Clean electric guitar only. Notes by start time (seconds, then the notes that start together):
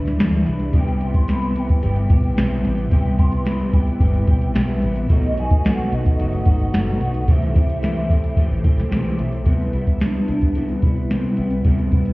Already playing: D4 E4 B4
0.18 E3 G3 D4 E4 B4
0.46 D4 E4 B4
0.73 C3 G3 B3 E4 G4
1.00 B3 E4 G4
1.27 C3 G3 B3 E4 G4
1.54 B3 E4 G4
1.81 G3 B3 E4 G4
2.09 B3 E4 G4
2.36 C3 G3 B3 E4 G4
2.64 B3 E4 G4
2.91 C3 G3 B3 E4 G4
3.17 B3 E4 G4
3.45 C3 G3 B3 E4 G4
3.74 B3 E4 G4
4.00 G3 B3 E4 G4
4.27 B3 E4 G4
4.54 C3 G3 B3 E4 G4
4.83 B3 E4 G4
5.09 B2 F#3 A3 D#4 F#4
5.37 A3 D#4 F#4
5.64 B2 F#3 A3 D#4 F#4
5.92 A3 D#4 F#4
6.19 F#3 A3 D#4 F#4
6.45 A3 D#4 F#4
6.73 B2 F#3 A3 D#4 F#4
6.99 A3 D#4 F#4
7.27 C3 E3 A3 E4 G4
7.54 A3 E4 G4
7.82 C3 E3 A3 E4 G4
8.09 A3 E4 G4
8.36 E3 A3 E4 G4
8.64 A3 E4 G4
8.90 C3 E3 A3 E4 G4
9.17 A3 E4 G4
9.45 C3 G3 B3 E4
9.73 G3 B3 E4
10.00 C3 G3 B3 E4
10.27 G3 B3 E4
10.56 C3 G3 B3 E4
10.83 G3 B3 E4
11.10 C3 G3 B3 E4
11.38 G3 B3 E4
11.65 C3 G3 B3 E4
11.91 G3 B3 E4